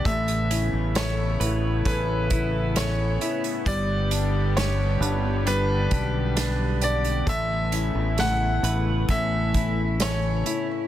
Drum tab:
HH |xxx-x-x-x-x-x-xx|x-x-x-x-x-x-x-xx|x-x-x-x-x-x-x-x-|
SD |----o-------o---|----o-------o---|----o-------o---|
BD |o-------o-o-----|o---------o-----|o-------o-o-----|